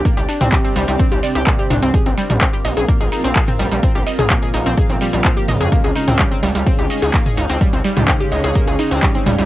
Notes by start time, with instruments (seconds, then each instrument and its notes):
Already playing: ambient pad C4 D4 G4 D5
0.05 synth arpeggio sound A#3, kick, closed hi-hat
0.17 analog synth bass C2, synth arpeggio sound G4, closed hi-hat
0.29 synth arpeggio sound D4, open hi-hat
0.41 analog synth bass C2, analog synth pad C3 G3 C4, synth arpeggio sound C4, closed hi-hat, mid tom
0.52 synth arpeggio sound G4, kick, clap, closed hi-hat
0.64 synth arpeggio sound C4, closed hi-hat
0.76 analog synth bass C2, synth arpeggio sound G3, open hi-hat
0.88 analog synth bass C2, synth arpeggio sound G3, closed hi-hat
0.99 synth arpeggio sound C4, kick, closed hi-hat
1.12 analog synth bass C2, synth arpeggio sound G4, closed hi-hat
1.23 synth arpeggio sound D5, open hi-hat
1.35 analog synth bass C2, synth arpeggio sound G4, closed hi-hat
1.47 synth arpeggio sound A#3, kick, clap, closed hi-hat
1.59 synth arpeggio sound G4, closed hi-hat
1.70 analog synth bass C2, synth arpeggio sound D4, mid tom, open hi-hat
1.83 analog synth bass C2, synth arpeggio sound C4, closed hi-hat
1.94 ambient pad F4 A#4 F5, synth arpeggio sound G#4, kick, closed hi-hat
2.06 analog synth bass A#1, synth arpeggio sound C4, closed hi-hat
2.18 synth arpeggio sound G3, open hi-hat
2.30 analog synth bass A#1, synth arpeggio sound G3, closed hi-hat, mid tom
2.41 synth arpeggio sound C4, kick, clap, closed hi-hat
2.53 synth arpeggio sound G4, closed hi-hat
2.65 analog synth bass A#1, synth arpeggio sound D#5, open hi-hat
2.77 analog synth bass A#1, synth arpeggio sound G#4, closed hi-hat
2.88 synth arpeggio sound A#3, kick, closed hi-hat
3.01 analog synth bass A#1, synth arpeggio sound G#4, closed hi-hat
3.12 analog synth pad A#2 F3 A#3, synth arpeggio sound D#4, open hi-hat
3.24 analog synth bass A#1, synth arpeggio sound C4, closed hi-hat
3.36 synth arpeggio sound G#4, kick, clap, closed hi-hat
3.48 synth arpeggio sound C4, closed hi-hat, mid tom
3.59 analog synth bass A#1, synth arpeggio sound G3, open hi-hat
3.72 analog synth bass A#1, synth arpeggio sound G3, closed hi-hat
3.83 synth arpeggio sound C4, kick, closed hi-hat
3.95 analog synth bass A#1, synth arpeggio sound G4, closed hi-hat
4.07 synth arpeggio sound D#5, open hi-hat
4.19 analog synth bass A#1, analog synth pad A#2 F3 A#3, synth arpeggio sound G#4, closed hi-hat, mid tom
4.30 synth arpeggio sound A#3, kick, clap, closed hi-hat
4.42 synth arpeggio sound G#4, closed hi-hat
4.54 analog synth bass A#1, synth arpeggio sound D#4, open hi-hat
4.66 analog synth bass A#1, synth arpeggio sound C4, closed hi-hat
4.77 synth arpeggio sound G#4, kick, closed hi-hat
4.90 analog synth bass G#1, synth arpeggio sound C4, closed hi-hat
5.01 synth arpeggio sound G3, open hi-hat
5.13 analog synth bass A#1, synth arpeggio sound G3, closed hi-hat
5.25 synth arpeggio sound C4, kick, clap, closed hi-hat
5.37 synth arpeggio sound G4, closed hi-hat
5.48 analog synth bass A#1, analog synth pad C#3 G#3 C#4, synth arpeggio sound D#5, mid tom, open hi-hat
5.60 analog synth bass F2, synth arpeggio sound G#4, closed hi-hat
5.72 synth arpeggio sound A#3, ambient pad D#4 G#4 C#5, kick, closed hi-hat
5.84 analog synth bass C#2, synth arpeggio sound G#4, closed hi-hat
5.96 synth arpeggio sound D#4, open hi-hat
6.08 analog synth bass C#2, synth arpeggio sound C4, closed hi-hat, mid tom
6.19 synth arpeggio sound G3, kick, clap, closed hi-hat
6.31 synth arpeggio sound C4, closed hi-hat
6.43 analog synth bass C#2, synth arpeggio sound G3, open hi-hat
6.55 analog synth bass C#2, synth arpeggio sound G3, closed hi-hat
6.66 synth arpeggio sound C4, kick, closed hi-hat
6.79 analog synth bass C#2, synth arpeggio sound G4, closed hi-hat
6.90 analog synth pad C#3 G#3 C#4, synth arpeggio sound D#5, open hi-hat
7.02 analog synth bass C#2, synth arpeggio sound G#4, closed hi-hat
7.14 synth arpeggio sound A#3, kick, clap, closed hi-hat
7.26 synth arpeggio sound G#4, closed hi-hat, mid tom
7.37 analog synth bass C#2, synth arpeggio sound D#4, open hi-hat
7.50 analog synth bass C#2, synth arpeggio sound C4, closed hi-hat
7.61 synth arpeggio sound G3, kick, closed hi-hat
7.73 analog synth bass C#2, synth arpeggio sound C4, closed hi-hat
7.85 synth arpeggio sound G3, open hi-hat
7.97 analog synth bass C#2, analog synth pad C#3 G#3 C#4, synth arpeggio sound G3, closed hi-hat, mid tom
8.08 synth arpeggio sound C4, kick, clap, closed hi-hat
8.20 synth arpeggio sound G4, closed hi-hat
8.32 analog synth bass C#2, synth arpeggio sound D#5, open hi-hat
8.44 analog synth bass C#2, synth arpeggio sound G#4, closed hi-hat
8.55 synth arpeggio sound A#3, kick, closed hi-hat
8.68 analog synth bass C#2, synth arpeggio sound G#4, closed hi-hat
8.79 synth arpeggio sound D#4, open hi-hat
8.91 analog synth bass C#2, synth arpeggio sound C4, closed hi-hat
9.03 synth arpeggio sound G3, kick, clap, closed hi-hat
9.15 synth arpeggio sound C4, closed hi-hat
9.26 analog synth bass C#2, synth arpeggio sound G3, mid tom, open hi-hat
9.39 analog synth bass C#2, synth arpeggio sound G3, closed hi-hat